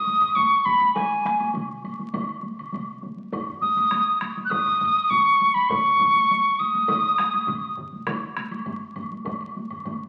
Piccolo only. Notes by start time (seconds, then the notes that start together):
Already playing: D#6
0.35 C#6
0.65 B5
0.95 G#5
3.62 D#6
4.45 F#6
4.50 D#6
5.10 C#6
5.54 B5
5.69 C#6
6.59 D#6